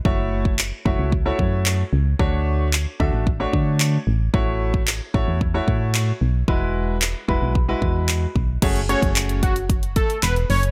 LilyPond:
<<
  \new Staff \with { instrumentName = "Analog synth lead" } { \time 4/4 \key fis \minor \tempo 4 = 112 r1 | r1 | r1 | r1 |
r8 cis''16 r8. fis'16 r8. a'8 b'16 r16 cis''16 r16 | }
  \new Staff \with { instrumentName = "Grand piano" } { \time 4/4 \key fis \minor <a e' fis' cis''>4 r8 <a e' fis' cis''>8 r16 <a e' fis' cis''>4 r8. | <a d' fis' cis''>4 r8 <a d' fis' e''>8 r16 <a d' fis' cis''>4 r8. | <a e' fis' cis''>4 r8 <a e' fis' cis''>8 r16 <a e' fis' cis''>4 r8. | <gis e' fis' b'>4 r8 <gis e' fis' b'>8 r16 <gis e' fis' b'>4 r8. |
<a cis' fis' gis' cis''>16 r16 <a cis' fis' gis' cis''>4~ <a cis' fis' gis' cis''>16 r2 r16 | }
  \new Staff \with { instrumentName = "FM bass" } { \clef bass \time 4/4 \key fis \minor fis,,4. fis,,16 cis,8. fis,4 cis,8 | d,4. d,16 a,,8. d4 a,,8 | a,,4. a,,16 e,8. a,4 b,,8 | e,,4. e,,16 b,,8. e,4 b,,8 |
fis,,8. fis,,2~ fis,,16 e,,8 fis,,8 | }
  \new DrumStaff \with { instrumentName = "Drums" } \drummode { \time 4/4 bd8. bd16 hc8 bd8 bd8 bd8 hc4 | bd4 hc8 bd8 bd8 bd8 hc4 | bd8. bd16 hc8 bd8 bd8 bd8 hc4 | bd4 hc8 bd8 bd8 bd8 hc8 bd8 |
<cymc hh bd>16 hh16 hh16 <hh bd>16 <hc hh>16 hh16 <hh bd>16 hh16 <hh bd>16 hh16 <hh bd>16 hh16 <hc hh>16 hh16 hho16 hh16 | }
>>